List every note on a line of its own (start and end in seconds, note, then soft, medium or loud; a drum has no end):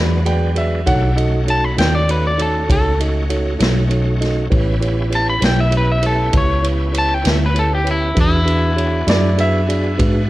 0.00 0.84 E2 medium
0.00 0.83 F#3 medium
0.00 0.83 G#3 medium
0.00 0.83 B3 medium
0.00 0.83 D4 medium
0.00 0.19 F#4 medium
0.00 0.19 G#4 medium
0.00 0.19 B4 soft
0.00 1.15 B4 medium
0.00 0.19 D5 medium
0.25 0.49 F#4 medium
0.25 0.49 G#4 medium
0.25 0.49 B4 medium
0.25 0.49 D5 medium
0.25 0.56 G5 medium
0.25 ride medium
0.55 0.79 F#4 medium
0.55 0.79 G#4 medium
0.55 0.79 B4 medium
0.55 0.80 D5 medium
0.55 0.87 E5 medium
0.55 ride medium
0.86 1.75 B1 medium
0.86 1.15 A3 medium
0.86 1.18 D4 medium
0.86 1.10 D#4 medium
0.86 1.18 E4 medium
0.86 1.09 F#4 medium
0.86 1.18 G4 medium
0.86 1.10 A4 medium
0.86 1.10 C#5 medium
0.86 1.31 F#5 medium
0.86 kick medium
0.86 ride medium
1.16 4.48 A3 medium
1.16 4.48 C#4 medium
1.16 1.40 D#4 medium
1.16 4.48 D#4 medium
1.16 1.40 F#4 medium
1.16 4.48 F#4 medium
1.16 1.40 A4 medium
1.16 1.40 D#5 medium
1.16 ride medium
1.47 1.70 D#4 medium
1.47 1.71 F#4 medium
1.47 1.71 A4 soft
1.47 1.71 C#5 medium
1.47 1.65 A5 medium
1.47 ride medium
1.65 1.79 B5 medium
1.77 2.67 D#2 medium
1.77 2.00 D#4 medium
1.77 2.01 F#4 medium
1.77 2.01 A4 medium
1.77 2.01 C#5 medium
1.77 1.94 G5 medium
1.77 snare loud
1.77 ride medium
1.95 2.09 D5 medium
2.08 2.31 D#4 soft
2.08 2.31 F#4 soft
2.08 2.32 A4 soft
2.08 2.25 B4 medium
2.08 2.32 C#5 medium
2.08 ride medium
2.27 2.40 D5 medium
2.37 2.61 D#4 medium
2.37 2.61 F#4 soft
2.37 2.61 A4 soft
2.37 2.62 C#5 medium
2.37 ride medium
2.42 2.70 A4 medium
2.69 3.58 C#2 medium
2.69 2.92 D#4 medium
2.69 2.92 F#4 soft
2.69 2.92 A4 soft
2.69 3.00 A4 medium
2.69 2.92 C#5 medium
2.69 kick loud
2.69 ride medium
3.00 3.23 D#4 medium
3.00 3.23 F#4 medium
3.00 3.23 A4 medium
3.00 3.23 D#5 medium
3.00 ride medium
3.30 3.53 D#4 medium
3.30 3.53 F#4 medium
3.30 3.53 A4 medium
3.30 3.53 C#5 medium
3.30 ride medium
3.59 4.49 B1 medium
3.59 3.83 D#4 medium
3.59 3.83 F#4 medium
3.59 3.83 A4 medium
3.59 3.83 C#5 medium
3.59 snare loud
3.59 ride medium
3.90 4.13 D#4 medium
3.90 4.13 F#4 medium
3.90 4.13 A4 medium
3.90 4.13 C#5 medium
3.90 ride medium
4.20 4.44 D#4 medium
4.20 4.44 F#4 medium
4.20 4.44 A4 medium
4.20 4.44 D#5 medium
4.20 snare soft
4.20 ride medium
4.50 5.40 A1 medium
4.50 8.12 B3 medium
4.50 8.13 C#4 medium
4.50 4.74 E4 medium
4.50 8.12 E4 medium
4.50 4.74 G4 medium
4.50 8.12 G4 medium
4.50 4.74 B4 medium
4.50 4.74 C#5 medium
4.50 kick loud
4.50 ride medium
4.80 5.04 E4 medium
4.80 5.04 G4 medium
4.80 5.04 B4 medium
4.80 5.05 C#5 medium
4.80 ride medium
5.10 5.34 E4 medium
5.10 5.34 G4 medium
5.10 5.34 B4 soft
5.10 5.35 C#5 medium
5.10 ride medium
5.15 5.29 A5 loud
5.30 5.44 B5 medium
5.41 6.31 B1 medium
5.41 5.65 E4 medium
5.41 5.65 G4 medium
5.41 5.65 B4 soft
5.41 5.65 C#5 medium
5.41 snare loud
5.41 ride medium
5.46 5.59 G5 medium
5.61 5.74 E5 medium
5.71 5.95 E4 medium
5.71 5.95 G4 medium
5.71 5.95 B4 soft
5.71 5.95 C#5 medium
5.71 ride medium
5.78 5.90 B4 medium
5.92 6.05 E5 medium
6.02 6.26 E4 medium
6.02 6.26 G4 soft
6.02 6.26 B4 soft
6.02 6.26 C#5 medium
6.02 ride medium
6.07 6.35 A4 medium
6.32 7.22 C#2 medium
6.32 6.56 E4 medium
6.32 6.56 G4 medium
6.32 6.56 B4 medium
6.32 6.56 C#5 medium
6.32 kick loud
6.32 ride medium
6.37 6.65 C#5 medium
6.62 6.86 E4 medium
6.62 6.86 G4 soft
6.62 6.86 B4 soft
6.62 6.87 C#5 medium
6.62 ride medium
6.92 7.16 E4 medium
6.92 7.16 G4 medium
6.92 7.17 B4 medium
6.92 7.17 C#5 medium
6.92 ride medium
6.98 7.14 A5 loud
7.14 7.29 G5 medium
7.23 8.14 D2 medium
7.23 7.47 E4 medium
7.23 7.47 G4 medium
7.23 7.48 B4 medium
7.23 7.47 C#5 medium
7.23 snare loud
7.23 ride medium
7.29 7.42 E5 medium
7.46 7.58 B4 medium
7.54 7.78 E4 medium
7.54 7.77 G4 soft
7.54 7.78 B4 soft
7.54 7.78 C#5 medium
7.54 ride medium
7.59 7.72 A4 medium
7.74 7.88 G4 medium
7.84 8.08 E4 medium
7.84 8.08 G4 soft
7.84 8.08 B4 soft
7.84 8.08 C#5 medium
7.84 ride medium
7.91 8.18 E4 medium
8.14 9.05 E2 medium
8.14 10.30 B3 medium
8.14 8.38 D4 medium
8.14 10.30 D4 medium
8.14 8.38 F#4 medium
8.14 10.30 F#4 medium
8.14 8.39 G#4 medium
8.14 10.30 G#4 medium
8.14 8.38 B4 medium
8.14 kick loud
8.14 ride medium
8.21 9.97 E4 loud
8.45 8.69 D4 medium
8.45 8.69 F#4 medium
8.45 8.69 G#4 medium
8.45 8.69 B4 medium
8.45 ride medium
8.76 8.99 D4 medium
8.76 9.00 F#4 medium
8.76 8.99 G#4 medium
8.76 9.00 C#5 medium
8.76 ride medium
9.06 9.96 F#2 medium
9.06 9.30 D4 medium
9.06 9.30 F#4 medium
9.06 9.30 G#4 medium
9.06 9.30 D5 medium
9.06 9.38 D5 medium
9.06 snare loud
9.06 ride medium
9.37 9.60 D4 medium
9.37 9.61 F#4 medium
9.37 9.61 G#4 medium
9.37 9.61 B4 medium
9.37 10.30 E5 loud
9.37 ride medium
9.67 9.91 D4 medium
9.67 9.91 F#4 medium
9.67 9.91 G#4 medium
9.67 9.91 D5 medium
9.67 ride medium
9.98 10.30 G#2 medium
9.98 10.21 D4 medium
9.98 10.21 F#4 medium
9.98 10.21 G#4 medium
9.98 10.21 B4 medium
9.98 kick loud
9.98 ride medium